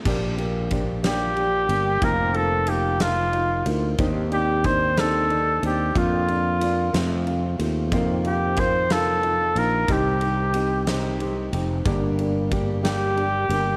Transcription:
<<
  \new Staff \with { instrumentName = "Flugelhorn" } { \time 6/8 \key bes \major \tempo 4. = 61 r4. g'4. | bes'8 a'8 g'8 f'4 r8 | r8 g'8 c''8 a'4 g'8 | f'2 r4 |
r8 g'8 c''8 a'4 bes'8 | g'2 r4 | r4. g'4. | }
  \new Staff \with { instrumentName = "Grand piano" } { \time 6/8 \key bes \major <bes d' g'>8 <bes d' g'>8 <bes d' g'>8 <bes d' g'>8 <d' g'>8 <bes d' g'>8 | <bes ees' f'>8 <bes ees' f'>8 <bes ees' f'>8 <bes ees' f'>8 <ees' f'>8 <bes ees' f'>8 | <c' d' ees'>8 <c' d' ees'>8 <c' d' ees'>8 <c' d' ees'>8 <d' ees'>8 <c' d' ees'>8 | <bes d' f'>8 <bes d' f'>8 <bes d' f'>8 <a c' f'>8 <c' f'>8 <a c' f'>8 |
<bes ees' f'>8 <bes ees' f'>8 <bes ees' f'>8 <bes ees' f'>8 <ees' f'>8 <bes ees' f'>8 | <c' ees' g'>8 <c' ees' g'>8 <c' ees' g'>8 <c' ees' g'>8 <c' ees' g'>8 <c' ees' g'>8 | <bes d' g'>8 <bes d' g'>8 <bes d' g'>8 <bes d' g'>8 <d' g'>8 <bes d' g'>8 | }
  \new Staff \with { instrumentName = "Steel-string acoustic guitar" } { \time 6/8 \key bes \major <bes, f bes d' g'>4 <f bes d' g'>8 <bes, f bes d' g'>4 <bes d'>8 | <f, c ees bes c' f'>4 <ees bes c' f'>8 <f, c ees bes c' f'>4 <bes c' f'>8 | <ees c' d' g'>4 <ees c' d' g'>8 <ees c' d' g'>4 <c' d' g'>8 | <f, d f bes d' f'>4 <f bes d' f'>8 <f, c f a c' f'>4 <f a c' f'>8 |
<f, c ees bes c' f'>4 <ees bes c' f'>8 <f, c ees bes c' f'>4 <ees bes c' f'>8 | <c ees c' ees' g'>4 <ees c' ees' g'>8 <c ees c' ees' g'>4 <c' ees' g'>8 | <g, d g bes d' g'>4 <g bes d' g'>8 <g, d g bes d' g'>4 <g bes d' g'>8 | }
  \new Staff \with { instrumentName = "Fretless electric bass" } { \clef bass \time 6/8 \key bes \major bes,,2~ bes,,8 g,,8 | f,,2~ f,,8 d,8 | ees,2~ ees,8 ees,8 | f,4. f,4 ees,8 |
f,2~ f,8 bes,,8 | c,2~ c,8 f,,8 | g,,2~ g,,8 g,,8 | }
  \new DrumStaff \with { instrumentName = "Drums" } \drummode { \time 6/8 <cymc bd>8 cymr8 <bd cymr>8 <cymr sn>8 cymr8 cymr8 | <bd cymr>8 cymr8 cymr8 <cymr sn>8 cymr8 cymr8 | <bd cymr>8 cymr8 <bd cymr>8 <cymr sn>8 cymr8 cymr8 | <bd cymr>8 cymr8 cymr8 <cymr sn>8 cymr8 cymr8 |
<bd cymr>8 cymr8 <bd cymr>8 <cymr sn>8 cymr8 cymr8 | <bd cymr>8 cymr8 cymr8 <cymr sn>8 cymr8 cymr8 | <bd cymr>8 cymr8 <bd cymr>8 <cymr sn>8 cymr8 cymr8 | }
>>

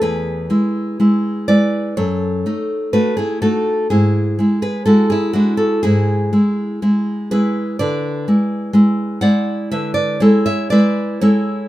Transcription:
\new Staff \with { instrumentName = "Nylon-string guitar" } { \time 4/4 \key e \mixolydian \tempo 4 = 62 << { <gis' b'>4. <b' d''>8 <a' cis''>4 <fis' b'>16 <e' gis'>16 <fis' a'>8 | <e' gis'>8. <gis' b'>16 <fis' a'>16 <e' gis'>16 <d' fis'>16 <fis' a'>16 <e' gis'>4. <gis' b'>8 | <b' d''>4. <d'' fis''>8 <b' e''>16 <b' d''>16 <a' cis''>16 <cis'' e''>16 <b' d''>8 <a' cis''>8 | } \\ { e,8 <gis e'>8 <gis e'>8 <gis e'>8 fis,8 <a dis'>8 <a dis'>8 <a dis'>8 | gis,8 <gis e'>8 <gis e'>8 <gis e'>8 gis,8 <gis e'>8 <gis e'>8 <gis e'>8 | d8 <gis e'>8 <gis e'>8 <gis e'>8 d8 <gis e'>8 <gis e'>8 <gis e'>8 | } >> }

